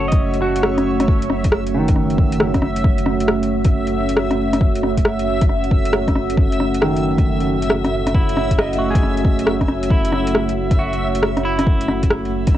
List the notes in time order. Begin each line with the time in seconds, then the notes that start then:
Already playing: F#1 A3 C#4 F#4 C#5 E5 F#5
0.08 D#5, closed hi-hat
0.12 kick
0.34 closed hi-hat
0.42 F#4
0.56 closed hi-hat
0.63 cross-stick
0.78 cross-stick, closed hi-hat
1.00 cross-stick, closed hi-hat
1.08 kick
1.22 closed hi-hat
1.30 cross-stick
1.44 kick, closed hi-hat
1.52 cross-stick
1.66 closed hi-hat
1.74 D#3
1.88 kick, closed hi-hat
1.96 cross-stick
2.10 closed hi-hat
2.18 kick
2.32 closed hi-hat
2.40 cross-stick
2.54 kick, cross-stick, closed hi-hat
2.62 cross-stick
2.76 closed hi-hat
2.84 kick
2.98 closed hi-hat
3.06 cross-stick
3.20 closed hi-hat
3.28 cross-stick
3.43 closed hi-hat
3.65 kick, closed hi-hat
3.87 closed hi-hat
4.09 closed hi-hat
4.17 cross-stick
4.31 cross-stick, closed hi-hat
4.53 cross-stick, closed hi-hat
4.61 kick
4.76 closed hi-hat
4.83 cross-stick
4.97 kick, closed hi-hat
5.05 cross-stick
5.19 closed hi-hat
5.41 kick, closed hi-hat
5.49 cross-stick
5.64 closed hi-hat
5.71 kick
5.85 closed hi-hat
5.93 cross-stick
6.08 kick, cross-stick, closed hi-hat
6.16 cross-stick
6.30 closed hi-hat
6.37 F#1, kick
6.52 closed hi-hat
6.60 cross-stick
6.74 closed hi-hat
6.81 D#3, cross-stick
6.96 closed hi-hat
7.18 kick, closed hi-hat
7.40 closed hi-hat
7.62 closed hi-hat
7.70 cross-stick
7.84 cross-stick, closed hi-hat
8.07 cross-stick, closed hi-hat
8.14 E4, kick
8.29 closed hi-hat
8.37 cross-stick
8.51 kick, closed hi-hat
8.58 D#5, cross-stick
8.73 closed hi-hat
8.78 F#4
8.90 G#4
8.95 kick, closed hi-hat
9.03 cross-stick
9.17 closed hi-hat
9.24 kick
9.39 closed hi-hat
9.47 cross-stick
9.61 kick, cross-stick, closed hi-hat
9.68 cross-stick
9.83 closed hi-hat
9.90 E4, kick
10.05 closed hi-hat
10.12 cross-stick
10.27 closed hi-hat
10.35 cross-stick
10.49 closed hi-hat
10.71 kick, closed hi-hat
10.79 F#4
10.93 closed hi-hat
11.15 closed hi-hat
11.23 cross-stick
11.37 cross-stick, closed hi-hat
11.45 E4
11.59 cross-stick, closed hi-hat
11.67 kick
11.81 closed hi-hat
11.88 cross-stick
12.03 kick, closed hi-hat
12.10 cross-stick
12.25 closed hi-hat
12.47 kick, closed hi-hat
12.55 cross-stick